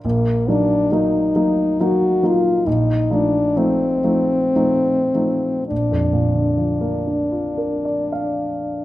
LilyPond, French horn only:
\new Staff \with { instrumentName = "French horn" } { \time 3/4 \key bes \major \tempo 4 = 60 bes8 d'8 ees'4 ges'8 f'8 | ees'8 d'8 c'2 | d'2. | }